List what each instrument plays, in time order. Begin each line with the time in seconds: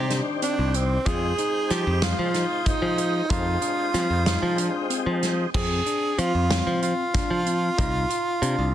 Already playing: picked electric bass C3, tonewheel organ D#3 C4 D4 G4, tenor saxophone G4
0.10 tine electric piano D4, snare, closed hi-hat
0.42 tine electric piano C4, tenor saxophone D4, closed hi-hat
0.59 picked electric bass C2
0.74 tenor saxophone C4, closed hi-hat
1.05 picked electric bass F2, tonewheel organ G#3 C4 D#4 G5, tine electric piano F4, tenor saxophone G#4, kick, closed hi-hat
1.38 tine electric piano D#4, closed hi-hat
1.70 picked electric bass F3, tenor saxophone G4, snare, closed hi-hat
1.87 picked electric bass F2
2.02 tine electric piano F4, tenor saxophone F4, snare, closed hi-hat
2.19 picked electric bass F3
2.34 tine electric piano D#4, snare, closed hi-hat
2.66 tenor saxophone D#4, tine electric piano F4, kick, closed hi-hat
2.82 picked electric bass F3
2.98 tine electric piano F4, closed hi-hat
3.29 picked electric bass F2, tonewheel organ G#3 C4 D#4 G4, tine electric piano D#4, tenor saxophone F4, kick, closed hi-hat
3.62 tine electric piano D4, closed hi-hat
3.94 picked electric bass F3, tine electric piano C4, snare, closed hi-hat
4.10 picked electric bass F2
4.26 tine electric piano D#4, snare, closed hi-hat
4.43 picked electric bass F3
4.58 tine electric piano D4, closed hi-hat
4.90 tine electric piano C4, closed hi-hat
5.06 picked electric bass F3
5.23 snare, closed hi-hat
5.54 picked electric bass F2, tine electric piano C4, tenor saxophone G#4, kick, crash
5.86 tine electric piano D4, closed hi-hat
6.18 picked electric bass F3, tine electric piano C4, tenor saxophone F4, closed hi-hat
6.35 picked electric bass F2
6.50 tine electric piano C4, snare, closed hi-hat
6.67 picked electric bass F3
6.83 tenor saxophone F4, closed hi-hat
7.14 tine electric piano D4, kick, snare, closed hi-hat
7.31 picked electric bass F3
7.46 tine electric piano C4, closed hi-hat
7.78 picked electric bass C2, tine electric piano D#4, kick, closed hi-hat
8.10 tine electric piano F4, closed hi-hat
8.42 picked electric bass C3, tine electric piano D4, closed hi-hat
8.59 picked electric bass C2